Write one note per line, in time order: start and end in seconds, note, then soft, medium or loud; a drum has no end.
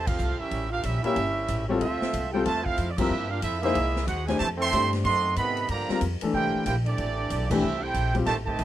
0.00 0.19 E2 medium
0.07 0.40 A3 medium
0.07 0.40 C4 medium
0.07 0.40 F4 medium
0.07 0.38 G4 medium
0.07 0.40 A4 medium
0.07 0.40 F5 medium
0.07 kick loud
0.07 crash medium
0.18 0.39 C2 loud
0.18 hi-hat pedal medium
0.39 0.72 G3 medium
0.39 0.72 C#4 medium
0.39 0.73 C#4 medium
0.39 0.72 E4 medium
0.39 0.70 G4 medium
0.39 0.70 A#4 medium
0.39 0.72 E5 loud
0.39 muted upright bass stroke soft
0.51 0.83 A1 medium
0.51 kick soft
0.51 ride medium
0.70 0.84 D4 medium
0.70 0.82 F4 medium
0.70 0.83 G4 medium
0.70 0.83 A#4 medium
0.70 0.83 F5 loud
0.82 1.03 A#1 loud
0.82 1.02 G3 medium
0.82 1.02 C#4 medium
0.82 1.04 C#4 medium
0.82 1.01 E4 medium
0.82 1.03 G4 medium
0.82 1.04 A#4 medium
0.82 1.03 E5 medium
0.82 kick soft
0.82 hi-hat pedal medium
0.82 ride medium
1.03 1.65 G3 medium
1.03 1.15 A#3 medium
1.03 1.65 C#4 medium
1.03 1.16 C#4 medium
1.03 1.66 C#4 medium
1.03 1.64 E4 medium
1.03 1.16 E4 medium
1.03 1.65 G4 medium
1.03 1.16 G4 medium
1.03 1.66 A#4 medium
1.03 1.65 E5 loud
1.03 muted upright bass stroke soft
1.03 ride medium
1.16 1.48 G1 medium
1.16 kick soft
1.16 ride medium
1.48 1.80 A1 loud
1.48 kick soft
1.48 hi-hat pedal medium
1.48 ride medium
1.67 1.80 E3 medium
1.67 1.80 G3 medium
1.67 1.80 A#3 medium
1.67 1.81 C4 medium
1.67 1.79 C#4 medium
1.67 1.80 E4 medium
1.67 1.81 F4 medium
1.67 1.80 G4 medium
1.67 1.80 C#5 medium
1.71 1.81 A4 medium
1.80 2.00 D2 medium
1.80 2.30 A3 medium
1.80 2.30 C4 medium
1.80 2.29 F4 medium
1.80 2.30 F4 medium
1.80 2.30 A4 medium
1.80 2.30 E5 loud
1.80 kick soft
1.80 ride medium
2.02 muted upright bass stroke soft
2.02 snare medium
2.13 2.45 C2 loud
2.13 kick soft
2.13 hi-hat pedal medium
2.13 ride medium
2.32 2.45 G3 medium
2.32 2.45 C4 medium
2.32 2.45 E4 medium
2.32 2.46 F4 medium
2.32 2.44 G4 medium
2.32 2.45 A4 medium
2.32 2.45 C5 medium
2.32 2.45 G5 medium
2.36 2.46 A4 medium
2.44 2.77 E2 medium
2.44 2.64 C3 medium
2.44 2.64 F3 medium
2.44 2.62 A3 medium
2.44 2.65 F4 medium
2.44 2.65 C5 loud
2.44 2.65 E5 loud
2.44 2.65 A5 loud
2.44 kick soft
2.44 ride medium
2.63 2.88 A3 medium
2.63 2.88 C4 medium
2.63 2.90 C4 medium
2.63 2.89 E4 medium
2.63 2.88 F4 medium
2.63 2.89 A4 medium
2.63 2.89 F5 loud
2.63 kick medium
2.78 3.09 F2 medium
2.78 kick soft
2.78 hi-hat pedal medium
2.78 ride medium
2.91 2.99 D5 medium
2.97 3.31 F3 medium
2.97 3.10 G3 medium
2.97 3.28 A#3 medium
2.97 3.10 C4 medium
2.97 3.30 D4 medium
2.97 3.30 E4 medium
2.97 3.10 F4 medium
2.97 3.29 G4 medium
2.97 3.29 A#4 medium
2.97 3.10 A#4 medium
2.97 3.31 E5 loud
2.97 kick medium
2.97 crash medium
3.10 3.42 G2 medium
3.29 3.42 A#3 medium
3.29 3.42 D4 medium
3.29 3.43 D4 medium
3.29 3.42 F4 medium
3.29 3.43 G4 medium
3.29 3.43 A#4 medium
3.29 3.43 F5 loud
3.42 3.74 F2 medium
3.42 3.62 C4 medium
3.42 3.61 E4 medium
3.42 3.62 F4 medium
3.42 3.62 A4 medium
3.42 3.62 E5 loud
3.42 kick soft
3.42 hi-hat pedal medium
3.42 ride medium
3.62 4.04 G#3 medium
3.62 4.04 A#3 medium
3.62 4.05 A#3 medium
3.62 3.74 A#3 medium
3.62 3.75 D#4 medium
3.62 4.04 E4 medium
3.62 4.05 G#4 medium
3.62 3.75 G#4 medium
3.62 3.75 C5 medium
3.62 4.05 D#5 medium
3.62 4.05 E5 loud
3.62 ride medium
3.75 4.07 C2 medium
3.75 kick soft
3.75 ride medium
3.96 snare medium
4.07 4.39 D#2 loud
4.07 4.26 D#4 medium
4.07 4.26 F#4 medium
4.07 4.27 G#4 medium
4.07 4.26 C5 medium
4.07 4.26 F#5 medium
4.07 kick soft
4.07 hi-hat pedal medium
4.07 ride medium
4.26 4.39 A#2 medium
4.26 4.37 E3 medium
4.26 4.38 G#3 medium
4.26 4.39 A3 medium
4.26 4.39 D4 medium
4.26 4.39 E4 medium
4.26 4.39 G4 medium
4.26 4.39 A#4 medium
4.26 4.39 C5 medium
4.26 4.39 D#5 medium
4.26 4.39 G#5 medium
4.26 snare soft
4.26 ride medium
4.37 4.71 F2 medium
4.37 4.47 C3 medium
4.37 4.47 E3 medium
4.37 4.47 A3 medium
4.37 4.48 G4 medium
4.37 4.49 C5 medium
4.37 4.49 E5 medium
4.37 4.48 A5 loud
4.37 kick soft
4.37 ride medium
4.57 4.89 E3 loud
4.57 4.89 A3 loud
4.57 4.89 C4 medium
4.57 4.90 A4 loud
4.57 4.91 E5 loud
4.57 4.90 G5 loud
4.57 4.91 C6 loud
4.72 5.04 G2 medium
4.72 5.05 A3 soft
4.72 5.05 D4 medium
4.72 5.05 G4 soft
4.72 5.05 C5 medium
4.72 kick soft
4.72 hi-hat pedal medium
4.72 ride medium
4.93 snare soft
4.93 ride medium
5.04 5.36 F#2 medium
5.04 5.34 D#3 medium
5.04 5.34 A3 medium
5.04 5.34 C4 medium
5.04 5.35 A4 medium
5.04 5.35 D#5 loud
5.04 5.35 F#5 loud
5.04 5.35 C6 loud
5.04 kick soft
5.04 ride medium
5.36 5.68 G#2 medium
5.36 5.67 C3 loud
5.36 5.67 D#3 medium
5.36 5.67 B3 medium
5.36 5.67 A4 medium
5.36 5.67 D#5 medium
5.36 5.67 F#5 medium
5.36 5.67 B5 loud
5.36 kick soft
5.36 hi-hat pedal medium
5.36 ride medium
5.57 ride medium
5.68 5.88 G2 medium
5.68 6.00 D3 medium
5.68 6.00 F3 medium
5.68 6.00 A#3 medium
5.68 5.99 G4 medium
5.68 6.00 D5 medium
5.68 6.00 F5 medium
5.68 6.00 A#5 loud
5.68 kick soft
5.68 ride medium
5.89 6.01 G3 medium
5.89 6.01 C4 medium
5.89 6.01 F4 medium
5.89 6.01 A#4 medium
5.89 muted upright bass stroke soft
5.89 snare medium
6.01 6.20 F2 loud
6.01 kick soft
6.01 hi-hat pedal medium
6.01 ride medium
6.21 6.64 E3 medium
6.21 6.64 A3 medium
6.21 6.64 D4 medium
6.21 6.65 A4 medium
6.21 muted upright bass stroke soft
6.21 ride medium
6.34 6.53 C2 loud
6.34 6.64 A#3 medium
6.34 6.64 E4 medium
6.34 6.64 G4 medium
6.34 6.64 A#4 medium
6.34 6.64 C5 medium
6.34 6.64 G5 loud
6.34 kick soft
6.54 muted upright bass stroke soft
6.66 6.97 A#1 loud
6.66 6.75 A#3 medium
6.66 6.75 E4 medium
6.66 6.76 E4 medium
6.66 6.75 G4 medium
6.66 6.76 A#4 medium
6.66 6.76 C5 medium
6.66 6.76 G5 medium
6.66 kick soft
6.66 hi-hat pedal medium
6.66 ride medium
6.85 7.46 E3 medium
6.85 7.46 A3 medium
6.85 7.48 C4 medium
6.85 7.46 D4 medium
6.85 7.47 G4 medium
6.85 7.47 A4 medium
6.85 7.47 D5 loud
6.85 ride medium
6.98 7.29 A1 medium
6.98 kick soft
6.98 ride medium
7.30 7.62 B1 loud
7.30 kick soft
7.30 hi-hat pedal medium
7.30 ride medium
7.48 7.62 E3 medium
7.48 7.82 A3 medium
7.48 7.62 A3 medium
7.48 7.79 C4 medium
7.48 7.83 C4 medium
7.48 7.62 D4 medium
7.48 7.80 E4 medium
7.48 7.83 G4 medium
7.48 7.81 A4 medium
7.48 7.83 E5 medium
7.48 kick loud
7.48 crash medium
7.53 7.63 G4 medium
7.63 7.94 C2 medium
7.80 8.14 C4 medium
7.80 8.14 E4 medium
7.80 8.15 E4 loud
7.80 8.14 G4 medium
7.80 8.15 A4 medium
7.80 8.15 C5 loud
7.80 8.15 G5 loud
7.94 8.26 A#1 loud
7.94 kick soft
7.94 hi-hat pedal medium
7.94 ride medium
8.14 8.26 G3 medium
8.14 8.26 C4 medium
8.14 8.26 F4 medium
8.14 8.27 G4 medium
8.14 kick medium
8.14 ride medium
8.25 8.58 A1 medium
8.25 8.34 C3 medium
8.25 8.35 D#3 loud
8.25 8.34 A3 loud
8.25 8.36 G4 loud
8.25 8.35 C5 medium
8.25 8.35 D#5 medium
8.25 8.36 A5 loud
8.25 kick soft
8.25 snare soft
8.25 ride medium
8.46 8.64 C3 medium
8.46 8.64 D#3 medium
8.46 8.64 A3 loud
8.46 8.64 G4 medium
8.46 8.64 C5 loud
8.46 8.64 D#5 medium
8.46 8.64 A5 loud
8.46 kick medium
8.59 8.64 C2 loud
8.59 kick soft
8.59 hi-hat pedal medium
8.59 ride medium